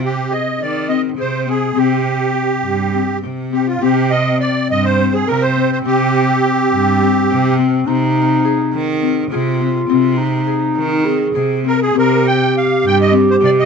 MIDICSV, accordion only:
0, 0, Header, 1, 2, 480
1, 0, Start_track
1, 0, Key_signature, -3, "minor"
1, 0, Tempo, 581395
1, 1457, Time_signature, 7, 3, 24, 8
1, 11272, End_track
2, 0, Start_track
2, 0, Title_t, "Accordion"
2, 0, Program_c, 0, 21
2, 36, Note_on_c, 0, 67, 66
2, 261, Note_on_c, 0, 75, 66
2, 276, Note_off_c, 0, 67, 0
2, 508, Note_off_c, 0, 75, 0
2, 509, Note_on_c, 0, 74, 72
2, 727, Note_off_c, 0, 74, 0
2, 732, Note_on_c, 0, 75, 71
2, 841, Note_off_c, 0, 75, 0
2, 993, Note_on_c, 0, 72, 73
2, 1232, Note_off_c, 0, 72, 0
2, 1233, Note_on_c, 0, 68, 67
2, 1461, Note_on_c, 0, 67, 75
2, 1471, Note_off_c, 0, 68, 0
2, 2630, Note_off_c, 0, 67, 0
2, 2913, Note_on_c, 0, 67, 64
2, 3031, Note_on_c, 0, 65, 66
2, 3034, Note_off_c, 0, 67, 0
2, 3149, Note_on_c, 0, 67, 80
2, 3153, Note_off_c, 0, 65, 0
2, 3389, Note_on_c, 0, 75, 81
2, 3398, Note_off_c, 0, 67, 0
2, 3615, Note_off_c, 0, 75, 0
2, 3635, Note_on_c, 0, 74, 77
2, 3859, Note_off_c, 0, 74, 0
2, 3885, Note_on_c, 0, 75, 88
2, 4002, Note_on_c, 0, 72, 82
2, 4004, Note_off_c, 0, 75, 0
2, 4240, Note_on_c, 0, 68, 68
2, 4247, Note_off_c, 0, 72, 0
2, 4355, Note_on_c, 0, 70, 76
2, 4362, Note_off_c, 0, 68, 0
2, 4472, Note_on_c, 0, 72, 83
2, 4480, Note_off_c, 0, 70, 0
2, 4713, Note_off_c, 0, 72, 0
2, 4725, Note_on_c, 0, 72, 74
2, 4777, Note_off_c, 0, 72, 0
2, 4843, Note_on_c, 0, 67, 77
2, 6237, Note_off_c, 0, 67, 0
2, 9641, Note_on_c, 0, 70, 76
2, 9743, Note_off_c, 0, 70, 0
2, 9757, Note_on_c, 0, 68, 79
2, 9873, Note_off_c, 0, 68, 0
2, 9895, Note_on_c, 0, 70, 83
2, 10127, Note_off_c, 0, 70, 0
2, 10128, Note_on_c, 0, 79, 84
2, 10365, Note_off_c, 0, 79, 0
2, 10382, Note_on_c, 0, 77, 74
2, 10612, Note_off_c, 0, 77, 0
2, 10621, Note_on_c, 0, 79, 98
2, 10718, Note_off_c, 0, 79, 0
2, 10745, Note_on_c, 0, 75, 82
2, 10845, Note_off_c, 0, 75, 0
2, 10985, Note_on_c, 0, 72, 70
2, 11031, Note_off_c, 0, 72, 0
2, 11099, Note_on_c, 0, 74, 82
2, 11146, Note_off_c, 0, 74, 0
2, 11221, Note_on_c, 0, 75, 81
2, 11272, Note_off_c, 0, 75, 0
2, 11272, End_track
0, 0, End_of_file